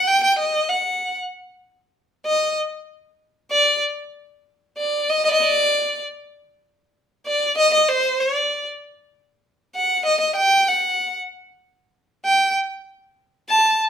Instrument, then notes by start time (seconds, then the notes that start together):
violin
0.07 G5
0.23 G5
0.38 D#5
0.69 F#5
2.26 D#5
3.51 D5
4.77 D5
5.09 D#5
5.25 D5 D#5
5.33 D#5
5.41 D5
7.26 D5
7.57 D#5
7.74 D#5
7.89 C5
8.20 D5
9.75 F#5
10.06 D#5
10.20 D#5
10.35 G5
10.68 F#5
12.25 G5
13.49 A5